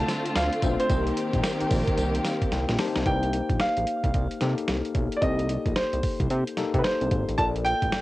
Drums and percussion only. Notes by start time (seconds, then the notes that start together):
0.08 snare, closed hi-hat, tambourine
0.26 closed hi-hat
0.36 snare, closed hi-hat, tambourine
0.53 closed hi-hat
0.62 kick, closed hi-hat, tambourine
0.80 closed hi-hat
0.90 kick, closed hi-hat, tambourine
1.07 closed hi-hat
1.17 closed hi-hat
1.33 kick, closed hi-hat
1.44 snare, closed hi-hat, tambourine
1.60 closed hi-hat
1.71 kick, open hi-hat, tambourine
1.88 kick, closed hi-hat
1.98 closed hi-hat, tambourine
2.15 closed hi-hat
2.25 snare, closed hi-hat, tambourine
2.42 kick, closed hi-hat
2.52 snare, closed hi-hat
2.69 snare, closed hi-hat
2.79 snare, open hi-hat
2.96 snare, closed hi-hat
3.06 kick, closed hi-hat
3.23 closed hi-hat
3.33 closed hi-hat
3.50 kick, closed hi-hat
3.60 snare, closed hi-hat
3.77 closed hi-hat
3.87 closed hi-hat
4.04 kick, closed hi-hat
4.14 kick, closed hi-hat
4.31 closed hi-hat
4.41 snare, closed hi-hat
4.58 closed hi-hat
4.68 snare, closed hi-hat
4.85 closed hi-hat
4.95 kick, closed hi-hat
5.12 closed hi-hat
5.22 kick, closed hi-hat
5.39 closed hi-hat
5.49 closed hi-hat
5.66 kick, closed hi-hat
5.76 snare, closed hi-hat
5.93 closed hi-hat
6.03 kick, open hi-hat
6.20 kick, closed hi-hat
6.30 closed hi-hat
6.47 closed hi-hat
6.57 snare, closed hi-hat
6.74 kick, closed hi-hat
6.84 snare, closed hi-hat
7.01 closed hi-hat
7.11 kick, closed hi-hat
7.29 closed hi-hat
7.38 kick, closed hi-hat
7.56 closed hi-hat
7.66 closed hi-hat
7.82 kick, closed hi-hat
7.92 snare, closed hi-hat